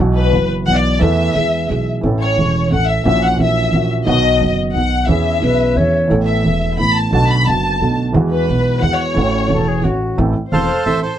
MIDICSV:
0, 0, Header, 1, 6, 480
1, 0, Start_track
1, 0, Time_signature, 3, 2, 24, 8
1, 0, Key_signature, 3, "major"
1, 0, Tempo, 339367
1, 15823, End_track
2, 0, Start_track
2, 0, Title_t, "Violin section"
2, 0, Program_c, 0, 48
2, 224, Note_on_c, 0, 71, 85
2, 673, Note_off_c, 0, 71, 0
2, 943, Note_on_c, 0, 78, 94
2, 1058, Note_off_c, 0, 78, 0
2, 1058, Note_on_c, 0, 74, 91
2, 1424, Note_off_c, 0, 74, 0
2, 1428, Note_on_c, 0, 76, 94
2, 2635, Note_off_c, 0, 76, 0
2, 3120, Note_on_c, 0, 73, 82
2, 3789, Note_off_c, 0, 73, 0
2, 3853, Note_on_c, 0, 78, 85
2, 4078, Note_on_c, 0, 76, 81
2, 4086, Note_off_c, 0, 78, 0
2, 4306, Note_off_c, 0, 76, 0
2, 4323, Note_on_c, 0, 76, 96
2, 4546, Note_off_c, 0, 76, 0
2, 4580, Note_on_c, 0, 78, 96
2, 4811, Note_off_c, 0, 78, 0
2, 4829, Note_on_c, 0, 76, 92
2, 5483, Note_off_c, 0, 76, 0
2, 5759, Note_on_c, 0, 75, 96
2, 6425, Note_off_c, 0, 75, 0
2, 6711, Note_on_c, 0, 78, 84
2, 7157, Note_off_c, 0, 78, 0
2, 7175, Note_on_c, 0, 76, 82
2, 8384, Note_off_c, 0, 76, 0
2, 8850, Note_on_c, 0, 76, 83
2, 9534, Note_off_c, 0, 76, 0
2, 9599, Note_on_c, 0, 83, 97
2, 9835, Note_on_c, 0, 81, 84
2, 9839, Note_off_c, 0, 83, 0
2, 10049, Note_off_c, 0, 81, 0
2, 10066, Note_on_c, 0, 81, 93
2, 10293, Note_off_c, 0, 81, 0
2, 10322, Note_on_c, 0, 83, 92
2, 10557, Note_on_c, 0, 81, 87
2, 10558, Note_off_c, 0, 83, 0
2, 11273, Note_off_c, 0, 81, 0
2, 11748, Note_on_c, 0, 71, 86
2, 12416, Note_off_c, 0, 71, 0
2, 12458, Note_on_c, 0, 78, 94
2, 12689, Note_on_c, 0, 73, 81
2, 12702, Note_off_c, 0, 78, 0
2, 13901, Note_off_c, 0, 73, 0
2, 14870, Note_on_c, 0, 72, 73
2, 15323, Note_off_c, 0, 72, 0
2, 15349, Note_on_c, 0, 72, 70
2, 15578, Note_off_c, 0, 72, 0
2, 15594, Note_on_c, 0, 69, 63
2, 15820, Note_off_c, 0, 69, 0
2, 15823, End_track
3, 0, Start_track
3, 0, Title_t, "Bandoneon"
3, 0, Program_c, 1, 23
3, 14885, Note_on_c, 1, 77, 82
3, 14891, Note_on_c, 1, 69, 61
3, 14899, Note_on_c, 1, 72, 57
3, 15331, Note_off_c, 1, 77, 0
3, 15364, Note_on_c, 1, 76, 84
3, 15557, Note_off_c, 1, 69, 0
3, 15561, Note_off_c, 1, 72, 0
3, 15585, Note_off_c, 1, 76, 0
3, 15591, Note_on_c, 1, 72, 75
3, 15818, Note_off_c, 1, 72, 0
3, 15823, End_track
4, 0, Start_track
4, 0, Title_t, "Flute"
4, 0, Program_c, 2, 73
4, 7671, Note_on_c, 2, 71, 79
4, 8151, Note_on_c, 2, 73, 90
4, 8173, Note_off_c, 2, 71, 0
4, 8754, Note_off_c, 2, 73, 0
4, 13190, Note_on_c, 2, 73, 91
4, 13275, Note_off_c, 2, 73, 0
4, 13429, Note_on_c, 2, 69, 82
4, 13682, Note_on_c, 2, 68, 74
4, 13704, Note_off_c, 2, 69, 0
4, 13907, Note_on_c, 2, 66, 69
4, 13928, Note_off_c, 2, 68, 0
4, 14392, Note_off_c, 2, 66, 0
4, 15823, End_track
5, 0, Start_track
5, 0, Title_t, "Grand piano"
5, 0, Program_c, 3, 0
5, 0, Note_on_c, 3, 35, 68
5, 0, Note_on_c, 3, 47, 65
5, 0, Note_on_c, 3, 52, 52
5, 0, Note_on_c, 3, 54, 49
5, 2, Note_on_c, 3, 59, 51
5, 19, Note_on_c, 3, 66, 58
5, 422, Note_off_c, 3, 52, 0
5, 442, Note_off_c, 3, 54, 0
5, 443, Note_on_c, 3, 52, 34
5, 446, Note_off_c, 3, 35, 0
5, 446, Note_off_c, 3, 47, 0
5, 453, Note_off_c, 3, 59, 0
5, 462, Note_off_c, 3, 66, 0
5, 464, Note_on_c, 3, 54, 32
5, 469, Note_on_c, 3, 42, 41
5, 470, Note_on_c, 3, 30, 42
5, 474, Note_on_c, 3, 59, 34
5, 497, Note_on_c, 3, 66, 39
5, 911, Note_off_c, 3, 52, 0
5, 923, Note_off_c, 3, 54, 0
5, 925, Note_off_c, 3, 42, 0
5, 926, Note_off_c, 3, 30, 0
5, 928, Note_off_c, 3, 59, 0
5, 932, Note_on_c, 3, 52, 33
5, 939, Note_off_c, 3, 66, 0
5, 953, Note_on_c, 3, 54, 32
5, 960, Note_on_c, 3, 47, 41
5, 961, Note_on_c, 3, 35, 39
5, 969, Note_on_c, 3, 59, 32
5, 991, Note_on_c, 3, 66, 38
5, 1379, Note_off_c, 3, 52, 0
5, 1400, Note_on_c, 3, 52, 57
5, 1408, Note_off_c, 3, 54, 0
5, 1411, Note_off_c, 3, 47, 0
5, 1412, Note_off_c, 3, 35, 0
5, 1416, Note_off_c, 3, 59, 0
5, 1416, Note_on_c, 3, 57, 52
5, 1421, Note_off_c, 3, 52, 0
5, 1427, Note_off_c, 3, 66, 0
5, 1429, Note_on_c, 3, 40, 64
5, 1431, Note_on_c, 3, 52, 59
5, 1442, Note_on_c, 3, 59, 50
5, 1455, Note_on_c, 3, 69, 57
5, 1871, Note_off_c, 3, 52, 0
5, 1881, Note_off_c, 3, 57, 0
5, 1887, Note_off_c, 3, 40, 0
5, 1893, Note_on_c, 3, 52, 41
5, 1894, Note_off_c, 3, 59, 0
5, 1900, Note_off_c, 3, 69, 0
5, 1906, Note_on_c, 3, 56, 32
5, 1917, Note_on_c, 3, 40, 39
5, 1924, Note_on_c, 3, 59, 30
5, 1939, Note_on_c, 3, 68, 38
5, 2344, Note_off_c, 3, 52, 0
5, 2365, Note_off_c, 3, 56, 0
5, 2365, Note_on_c, 3, 52, 31
5, 2373, Note_off_c, 3, 40, 0
5, 2376, Note_off_c, 3, 59, 0
5, 2384, Note_off_c, 3, 68, 0
5, 2386, Note_on_c, 3, 56, 29
5, 2394, Note_on_c, 3, 47, 38
5, 2396, Note_on_c, 3, 35, 36
5, 2401, Note_on_c, 3, 59, 29
5, 2422, Note_on_c, 3, 68, 36
5, 2825, Note_off_c, 3, 52, 0
5, 2846, Note_on_c, 3, 52, 50
5, 2849, Note_off_c, 3, 56, 0
5, 2853, Note_off_c, 3, 47, 0
5, 2854, Note_off_c, 3, 35, 0
5, 2857, Note_off_c, 3, 59, 0
5, 2867, Note_off_c, 3, 68, 0
5, 2873, Note_on_c, 3, 57, 48
5, 2875, Note_on_c, 3, 45, 60
5, 2877, Note_on_c, 3, 33, 60
5, 2892, Note_on_c, 3, 61, 45
5, 2909, Note_on_c, 3, 69, 57
5, 3314, Note_off_c, 3, 52, 0
5, 3329, Note_off_c, 3, 57, 0
5, 3334, Note_off_c, 3, 45, 0
5, 3335, Note_off_c, 3, 33, 0
5, 3336, Note_on_c, 3, 52, 36
5, 3342, Note_off_c, 3, 61, 0
5, 3351, Note_off_c, 3, 69, 0
5, 3351, Note_on_c, 3, 57, 30
5, 3358, Note_on_c, 3, 40, 39
5, 3366, Note_on_c, 3, 28, 39
5, 3371, Note_on_c, 3, 61, 30
5, 3394, Note_on_c, 3, 69, 37
5, 3780, Note_off_c, 3, 52, 0
5, 3802, Note_on_c, 3, 52, 32
5, 3807, Note_off_c, 3, 57, 0
5, 3815, Note_off_c, 3, 40, 0
5, 3818, Note_off_c, 3, 28, 0
5, 3821, Note_off_c, 3, 61, 0
5, 3828, Note_on_c, 3, 57, 31
5, 3832, Note_off_c, 3, 69, 0
5, 3833, Note_on_c, 3, 45, 39
5, 3835, Note_on_c, 3, 33, 38
5, 3844, Note_on_c, 3, 61, 33
5, 3860, Note_on_c, 3, 69, 36
5, 4274, Note_off_c, 3, 52, 0
5, 4291, Note_off_c, 3, 57, 0
5, 4293, Note_off_c, 3, 45, 0
5, 4294, Note_off_c, 3, 33, 0
5, 4296, Note_on_c, 3, 52, 51
5, 4298, Note_off_c, 3, 61, 0
5, 4306, Note_off_c, 3, 69, 0
5, 4312, Note_on_c, 3, 58, 49
5, 4322, Note_on_c, 3, 34, 62
5, 4323, Note_on_c, 3, 46, 60
5, 4330, Note_on_c, 3, 61, 50
5, 4347, Note_on_c, 3, 66, 56
5, 4755, Note_off_c, 3, 52, 0
5, 4773, Note_off_c, 3, 58, 0
5, 4776, Note_on_c, 3, 52, 36
5, 4777, Note_off_c, 3, 34, 0
5, 4778, Note_off_c, 3, 46, 0
5, 4782, Note_off_c, 3, 61, 0
5, 4790, Note_off_c, 3, 66, 0
5, 4794, Note_on_c, 3, 58, 33
5, 4801, Note_on_c, 3, 46, 42
5, 4805, Note_on_c, 3, 34, 42
5, 4812, Note_on_c, 3, 61, 33
5, 4828, Note_on_c, 3, 66, 38
5, 5229, Note_off_c, 3, 52, 0
5, 5250, Note_on_c, 3, 52, 34
5, 5252, Note_off_c, 3, 58, 0
5, 5255, Note_off_c, 3, 46, 0
5, 5257, Note_off_c, 3, 34, 0
5, 5261, Note_off_c, 3, 61, 0
5, 5269, Note_off_c, 3, 66, 0
5, 5276, Note_on_c, 3, 58, 33
5, 5278, Note_on_c, 3, 34, 40
5, 5282, Note_on_c, 3, 46, 41
5, 5285, Note_on_c, 3, 61, 31
5, 5310, Note_on_c, 3, 66, 40
5, 5718, Note_off_c, 3, 52, 0
5, 5728, Note_on_c, 3, 51, 58
5, 5732, Note_off_c, 3, 58, 0
5, 5733, Note_off_c, 3, 34, 0
5, 5735, Note_off_c, 3, 46, 0
5, 5736, Note_off_c, 3, 61, 0
5, 5749, Note_off_c, 3, 66, 0
5, 5749, Note_on_c, 3, 54, 53
5, 5754, Note_on_c, 3, 35, 66
5, 5756, Note_on_c, 3, 47, 66
5, 5762, Note_on_c, 3, 59, 52
5, 5780, Note_on_c, 3, 66, 66
5, 6195, Note_off_c, 3, 51, 0
5, 6207, Note_off_c, 3, 54, 0
5, 6209, Note_off_c, 3, 35, 0
5, 6211, Note_off_c, 3, 47, 0
5, 6214, Note_off_c, 3, 59, 0
5, 6216, Note_on_c, 3, 51, 35
5, 6223, Note_off_c, 3, 66, 0
5, 6235, Note_on_c, 3, 54, 31
5, 6245, Note_on_c, 3, 42, 41
5, 6249, Note_on_c, 3, 30, 39
5, 6253, Note_on_c, 3, 59, 33
5, 6280, Note_on_c, 3, 66, 38
5, 6679, Note_off_c, 3, 51, 0
5, 6689, Note_off_c, 3, 54, 0
5, 6694, Note_off_c, 3, 42, 0
5, 6696, Note_off_c, 3, 30, 0
5, 6698, Note_off_c, 3, 59, 0
5, 6700, Note_on_c, 3, 51, 35
5, 6712, Note_off_c, 3, 66, 0
5, 6714, Note_on_c, 3, 54, 31
5, 6726, Note_on_c, 3, 35, 43
5, 6729, Note_on_c, 3, 47, 40
5, 6732, Note_on_c, 3, 59, 32
5, 6756, Note_on_c, 3, 66, 39
5, 7162, Note_off_c, 3, 51, 0
5, 7168, Note_off_c, 3, 54, 0
5, 7171, Note_on_c, 3, 52, 53
5, 7172, Note_off_c, 3, 59, 0
5, 7174, Note_off_c, 3, 35, 0
5, 7176, Note_off_c, 3, 47, 0
5, 7189, Note_off_c, 3, 66, 0
5, 7192, Note_off_c, 3, 52, 0
5, 7193, Note_on_c, 3, 59, 48
5, 7202, Note_on_c, 3, 40, 64
5, 7203, Note_on_c, 3, 52, 62
5, 7216, Note_on_c, 3, 61, 49
5, 7229, Note_on_c, 3, 68, 57
5, 7618, Note_off_c, 3, 52, 0
5, 7635, Note_off_c, 3, 59, 0
5, 7639, Note_on_c, 3, 52, 34
5, 7653, Note_off_c, 3, 40, 0
5, 7654, Note_off_c, 3, 61, 0
5, 7656, Note_on_c, 3, 59, 30
5, 7664, Note_on_c, 3, 47, 39
5, 7666, Note_off_c, 3, 68, 0
5, 7672, Note_on_c, 3, 35, 40
5, 7676, Note_on_c, 3, 61, 31
5, 7696, Note_on_c, 3, 68, 38
5, 8108, Note_off_c, 3, 52, 0
5, 8120, Note_off_c, 3, 59, 0
5, 8125, Note_off_c, 3, 47, 0
5, 8128, Note_off_c, 3, 35, 0
5, 8130, Note_off_c, 3, 61, 0
5, 8130, Note_on_c, 3, 52, 35
5, 8140, Note_off_c, 3, 68, 0
5, 8151, Note_off_c, 3, 52, 0
5, 8155, Note_on_c, 3, 59, 32
5, 8162, Note_on_c, 3, 52, 39
5, 8165, Note_on_c, 3, 40, 38
5, 8166, Note_on_c, 3, 61, 32
5, 8195, Note_on_c, 3, 68, 35
5, 8571, Note_off_c, 3, 52, 0
5, 8592, Note_on_c, 3, 52, 54
5, 8611, Note_off_c, 3, 59, 0
5, 8612, Note_on_c, 3, 57, 46
5, 8616, Note_off_c, 3, 40, 0
5, 8617, Note_off_c, 3, 61, 0
5, 8622, Note_on_c, 3, 45, 60
5, 8629, Note_on_c, 3, 33, 65
5, 8631, Note_off_c, 3, 68, 0
5, 8633, Note_on_c, 3, 59, 50
5, 8650, Note_on_c, 3, 69, 60
5, 9069, Note_off_c, 3, 52, 0
5, 9082, Note_off_c, 3, 57, 0
5, 9087, Note_off_c, 3, 45, 0
5, 9090, Note_off_c, 3, 33, 0
5, 9090, Note_on_c, 3, 52, 35
5, 9092, Note_off_c, 3, 59, 0
5, 9101, Note_off_c, 3, 69, 0
5, 9111, Note_on_c, 3, 57, 32
5, 9116, Note_on_c, 3, 28, 38
5, 9120, Note_on_c, 3, 40, 39
5, 9123, Note_on_c, 3, 59, 32
5, 9145, Note_on_c, 3, 69, 40
5, 9558, Note_off_c, 3, 52, 0
5, 9570, Note_off_c, 3, 57, 0
5, 9574, Note_off_c, 3, 28, 0
5, 9577, Note_off_c, 3, 40, 0
5, 9578, Note_off_c, 3, 59, 0
5, 9579, Note_on_c, 3, 52, 35
5, 9589, Note_off_c, 3, 69, 0
5, 9591, Note_on_c, 3, 57, 33
5, 9607, Note_on_c, 3, 33, 43
5, 9607, Note_on_c, 3, 45, 40
5, 9614, Note_on_c, 3, 59, 33
5, 9631, Note_on_c, 3, 69, 39
5, 10043, Note_off_c, 3, 52, 0
5, 10049, Note_off_c, 3, 57, 0
5, 10051, Note_on_c, 3, 50, 53
5, 10057, Note_off_c, 3, 33, 0
5, 10058, Note_off_c, 3, 45, 0
5, 10061, Note_off_c, 3, 59, 0
5, 10069, Note_off_c, 3, 69, 0
5, 10070, Note_on_c, 3, 57, 51
5, 10082, Note_on_c, 3, 35, 63
5, 10084, Note_on_c, 3, 47, 64
5, 10091, Note_on_c, 3, 59, 51
5, 10108, Note_on_c, 3, 66, 59
5, 10517, Note_off_c, 3, 50, 0
5, 10527, Note_off_c, 3, 57, 0
5, 10533, Note_off_c, 3, 35, 0
5, 10534, Note_off_c, 3, 47, 0
5, 10537, Note_off_c, 3, 59, 0
5, 10538, Note_on_c, 3, 50, 34
5, 10546, Note_off_c, 3, 66, 0
5, 10554, Note_on_c, 3, 57, 33
5, 10566, Note_on_c, 3, 30, 43
5, 10572, Note_on_c, 3, 42, 40
5, 10574, Note_on_c, 3, 59, 32
5, 10596, Note_on_c, 3, 66, 39
5, 11000, Note_off_c, 3, 50, 0
5, 11008, Note_off_c, 3, 57, 0
5, 11014, Note_off_c, 3, 30, 0
5, 11017, Note_off_c, 3, 42, 0
5, 11018, Note_off_c, 3, 59, 0
5, 11021, Note_on_c, 3, 50, 37
5, 11029, Note_off_c, 3, 66, 0
5, 11045, Note_on_c, 3, 57, 33
5, 11052, Note_on_c, 3, 47, 42
5, 11057, Note_on_c, 3, 35, 44
5, 11067, Note_on_c, 3, 59, 34
5, 11075, Note_on_c, 3, 66, 39
5, 11482, Note_off_c, 3, 50, 0
5, 11492, Note_on_c, 3, 52, 57
5, 11494, Note_off_c, 3, 57, 0
5, 11497, Note_off_c, 3, 47, 0
5, 11499, Note_off_c, 3, 35, 0
5, 11505, Note_off_c, 3, 59, 0
5, 11509, Note_off_c, 3, 66, 0
5, 11513, Note_off_c, 3, 52, 0
5, 11514, Note_on_c, 3, 56, 53
5, 11517, Note_on_c, 3, 40, 65
5, 11522, Note_on_c, 3, 52, 63
5, 11532, Note_on_c, 3, 59, 49
5, 11550, Note_on_c, 3, 66, 62
5, 11946, Note_off_c, 3, 52, 0
5, 11961, Note_off_c, 3, 56, 0
5, 11967, Note_on_c, 3, 52, 36
5, 11968, Note_off_c, 3, 40, 0
5, 11975, Note_off_c, 3, 59, 0
5, 11982, Note_on_c, 3, 56, 33
5, 11984, Note_off_c, 3, 66, 0
5, 11991, Note_on_c, 3, 35, 41
5, 11994, Note_on_c, 3, 47, 42
5, 11997, Note_on_c, 3, 59, 31
5, 12021, Note_on_c, 3, 66, 38
5, 12428, Note_off_c, 3, 52, 0
5, 12439, Note_off_c, 3, 56, 0
5, 12444, Note_off_c, 3, 35, 0
5, 12446, Note_off_c, 3, 47, 0
5, 12447, Note_off_c, 3, 59, 0
5, 12449, Note_on_c, 3, 52, 42
5, 12459, Note_off_c, 3, 66, 0
5, 12471, Note_on_c, 3, 56, 32
5, 12481, Note_on_c, 3, 40, 42
5, 12486, Note_on_c, 3, 59, 32
5, 12513, Note_on_c, 3, 66, 38
5, 12910, Note_off_c, 3, 52, 0
5, 12924, Note_off_c, 3, 56, 0
5, 12929, Note_off_c, 3, 40, 0
5, 12931, Note_on_c, 3, 52, 55
5, 12932, Note_off_c, 3, 59, 0
5, 12945, Note_off_c, 3, 66, 0
5, 12946, Note_on_c, 3, 57, 49
5, 12953, Note_on_c, 3, 33, 65
5, 12956, Note_on_c, 3, 45, 63
5, 12970, Note_on_c, 3, 61, 50
5, 12990, Note_on_c, 3, 66, 59
5, 13373, Note_off_c, 3, 52, 0
5, 13393, Note_off_c, 3, 57, 0
5, 13394, Note_on_c, 3, 52, 36
5, 13406, Note_off_c, 3, 33, 0
5, 13407, Note_off_c, 3, 45, 0
5, 13414, Note_off_c, 3, 61, 0
5, 13414, Note_on_c, 3, 57, 31
5, 13421, Note_on_c, 3, 40, 42
5, 13422, Note_on_c, 3, 28, 40
5, 13424, Note_off_c, 3, 66, 0
5, 13436, Note_on_c, 3, 61, 32
5, 13453, Note_on_c, 3, 66, 40
5, 13859, Note_off_c, 3, 52, 0
5, 13879, Note_off_c, 3, 57, 0
5, 13881, Note_on_c, 3, 52, 34
5, 13883, Note_off_c, 3, 28, 0
5, 13883, Note_off_c, 3, 40, 0
5, 13890, Note_off_c, 3, 61, 0
5, 13899, Note_off_c, 3, 66, 0
5, 13900, Note_on_c, 3, 57, 30
5, 13908, Note_on_c, 3, 45, 39
5, 13911, Note_on_c, 3, 33, 41
5, 13919, Note_on_c, 3, 61, 31
5, 13939, Note_on_c, 3, 66, 37
5, 14355, Note_off_c, 3, 52, 0
5, 14365, Note_off_c, 3, 57, 0
5, 14368, Note_off_c, 3, 45, 0
5, 14370, Note_off_c, 3, 33, 0
5, 14374, Note_off_c, 3, 61, 0
5, 14384, Note_off_c, 3, 66, 0
5, 14396, Note_on_c, 3, 57, 55
5, 14397, Note_on_c, 3, 45, 70
5, 14397, Note_on_c, 3, 52, 58
5, 14400, Note_on_c, 3, 69, 63
5, 14401, Note_on_c, 3, 33, 67
5, 14401, Note_on_c, 3, 60, 54
5, 14598, Note_off_c, 3, 45, 0
5, 14598, Note_off_c, 3, 52, 0
5, 14598, Note_off_c, 3, 57, 0
5, 14600, Note_off_c, 3, 33, 0
5, 14600, Note_off_c, 3, 60, 0
5, 14600, Note_off_c, 3, 69, 0
5, 14877, Note_on_c, 3, 40, 46
5, 14881, Note_on_c, 3, 57, 36
5, 14882, Note_on_c, 3, 60, 36
5, 14883, Note_on_c, 3, 52, 39
5, 14884, Note_on_c, 3, 28, 45
5, 14886, Note_on_c, 3, 69, 43
5, 15081, Note_off_c, 3, 40, 0
5, 15083, Note_off_c, 3, 57, 0
5, 15083, Note_off_c, 3, 60, 0
5, 15084, Note_off_c, 3, 28, 0
5, 15084, Note_off_c, 3, 52, 0
5, 15085, Note_off_c, 3, 69, 0
5, 15365, Note_on_c, 3, 45, 45
5, 15367, Note_on_c, 3, 33, 44
5, 15367, Note_on_c, 3, 52, 38
5, 15368, Note_on_c, 3, 57, 34
5, 15369, Note_on_c, 3, 60, 35
5, 15375, Note_on_c, 3, 69, 42
5, 15564, Note_off_c, 3, 45, 0
5, 15565, Note_off_c, 3, 33, 0
5, 15565, Note_off_c, 3, 52, 0
5, 15566, Note_off_c, 3, 57, 0
5, 15566, Note_off_c, 3, 60, 0
5, 15569, Note_off_c, 3, 69, 0
5, 15823, End_track
6, 0, Start_track
6, 0, Title_t, "Upright bass"
6, 0, Program_c, 4, 32
6, 0, Note_on_c, 4, 35, 71
6, 447, Note_off_c, 4, 35, 0
6, 479, Note_on_c, 4, 30, 46
6, 931, Note_off_c, 4, 30, 0
6, 967, Note_on_c, 4, 35, 45
6, 1415, Note_off_c, 4, 35, 0
6, 1439, Note_on_c, 4, 40, 69
6, 1892, Note_off_c, 4, 40, 0
6, 1914, Note_on_c, 4, 40, 47
6, 2372, Note_off_c, 4, 40, 0
6, 2404, Note_on_c, 4, 35, 40
6, 2858, Note_off_c, 4, 35, 0
6, 2876, Note_on_c, 4, 33, 62
6, 3334, Note_off_c, 4, 33, 0
6, 3358, Note_on_c, 4, 28, 45
6, 3815, Note_off_c, 4, 28, 0
6, 3848, Note_on_c, 4, 33, 42
6, 4301, Note_off_c, 4, 33, 0
6, 4317, Note_on_c, 4, 34, 70
6, 4775, Note_off_c, 4, 34, 0
6, 4798, Note_on_c, 4, 34, 45
6, 5254, Note_off_c, 4, 34, 0
6, 5276, Note_on_c, 4, 34, 44
6, 5732, Note_off_c, 4, 34, 0
6, 5753, Note_on_c, 4, 35, 71
6, 6209, Note_off_c, 4, 35, 0
6, 6235, Note_on_c, 4, 30, 48
6, 6689, Note_off_c, 4, 30, 0
6, 6716, Note_on_c, 4, 35, 44
6, 7169, Note_off_c, 4, 35, 0
6, 7192, Note_on_c, 4, 40, 70
6, 7648, Note_off_c, 4, 40, 0
6, 7677, Note_on_c, 4, 35, 45
6, 8131, Note_off_c, 4, 35, 0
6, 8151, Note_on_c, 4, 40, 42
6, 8609, Note_off_c, 4, 40, 0
6, 8638, Note_on_c, 4, 33, 67
6, 9095, Note_off_c, 4, 33, 0
6, 9125, Note_on_c, 4, 28, 47
6, 9579, Note_off_c, 4, 28, 0
6, 9612, Note_on_c, 4, 33, 45
6, 10060, Note_off_c, 4, 33, 0
6, 10078, Note_on_c, 4, 35, 70
6, 10531, Note_off_c, 4, 35, 0
6, 10562, Note_on_c, 4, 30, 48
6, 11012, Note_off_c, 4, 30, 0
6, 11038, Note_on_c, 4, 35, 45
6, 11490, Note_off_c, 4, 35, 0
6, 11518, Note_on_c, 4, 40, 69
6, 11968, Note_off_c, 4, 40, 0
6, 12010, Note_on_c, 4, 35, 50
6, 12453, Note_off_c, 4, 35, 0
6, 12481, Note_on_c, 4, 40, 45
6, 12929, Note_off_c, 4, 40, 0
6, 12965, Note_on_c, 4, 33, 69
6, 13411, Note_off_c, 4, 33, 0
6, 13445, Note_on_c, 4, 28, 46
6, 13894, Note_off_c, 4, 28, 0
6, 13928, Note_on_c, 4, 33, 44
6, 14378, Note_off_c, 4, 33, 0
6, 14402, Note_on_c, 4, 33, 75
6, 14601, Note_off_c, 4, 33, 0
6, 14880, Note_on_c, 4, 28, 54
6, 15082, Note_off_c, 4, 28, 0
6, 15361, Note_on_c, 4, 33, 49
6, 15563, Note_off_c, 4, 33, 0
6, 15823, End_track
0, 0, End_of_file